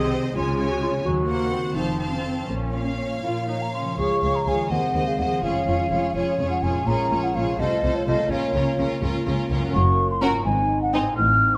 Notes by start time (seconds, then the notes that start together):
Already playing: C3 C4 D#4 G#4 C5 D#5
0.13 D#4 G#4
0.36 C#2 C#3 G#3 F4 C#5 G#5
0.59 C#4 C#5 G#5
0.71 F#4
0.82 C#4 F4 G#4
1.06 D#2 D#3 F#3 F#4
1.29 A#3 C4 C5 F#5
1.52 C4 C5
1.76 F1 F2 C4 D#4 C5 F5 A5
2.00 F3 C5 F5 A5
2.13 C#4
2.24 C4 A4
2.48 A#1 A#2 A#3 C#4
2.73 F3 C#5 F5
2.98 C#4
3.23 A#2 F4 A#4 F5
3.48 C#4 D#4 C#5 F5
3.62 A#5
3.73 F3 C#4 C6
3.80 C#3
3.85 F3
3.89 C#4
3.94 G#4
3.98 C#2 G#3 F4 G#4 C#5 F5 C#6
4.22 C#2 G#4 C#5 F5
4.35 A#5
4.46 C#2 G#4 C#5 F5 G#5
4.53 D#3
4.57 G#3
4.62 C4
4.66 G#4
4.70 D#2 G#3 C4 G#4 C5 D#5 F#5
4.94 D#2 G#4 C5 D#5
5.07 F5
5.19 D#2 G#4 C5 D#5 F#5
5.25 F3
5.30 G#3
5.34 C#4
5.39 G#4
5.43 F1 F2 G#3 C#4 F4 G#4 C#5 F5
5.67 F1 F2 F4 G#4 C#5
5.91 F1 F2 F4 G#4 C#5
6.15 F1 F2 G#3 C#4 F4 G#4 C#5
6.38 F1 F2 F4 G#4 C#5
6.51 F#5
6.63 F1 F2 F4 G#4 C#5 G#5
6.69 A#2
6.74 C#4
6.78 F4
6.83 A#2 G#4
6.87 A#1 G#3 C#4 F4 G#4 C#5 A#5
7.10 A#1 A#2 F4 G#4 C#5
7.23 F#5
7.34 A#1 A#2 F4 G#4 C#5 F5
7.42 C3
7.46 C4
7.51 F4
7.55 A4 C5
7.59 C2 C3 A3 F4 A4 D#5
7.82 C2 C3 F4 A4 C5
7.95 C#5
8.06 C2 C3 F4 A4 C5 D#5
8.13 C#3
8.17 A#3
8.22 F4
8.26 A#3 A#4 C#5
8.30 C#2 C#3 C#4 F4 A#4
8.54 C#2 C#3 C#4 F4 A#4
8.78 C#2 C#3 C#4 F4 A#4
9.02 C#2 C#3 C#4 F4 A#4
9.26 C#2 C#3 C#4 F4 A#4
9.50 C#2 C#3 C#4 F4 A#4
9.56 F#2
9.60 C#4
9.65 F#4
9.70 A#4
9.74 F#1 F#2 A#3 F#4 C#6
10.10 F4 C6
10.21 C#4 F#4 A#4 A#5
10.28 G#2
10.32 C4
10.37 D#4
10.41 C5 G#5
10.46 G#1 G#2 C4 D#4
10.82 F#5
10.94 C4 D#4 D#5 G#5
11.00 A2
11.05 D#4
11.09 F4
11.14 D#4 C5 F6
11.18 A1 A2 C4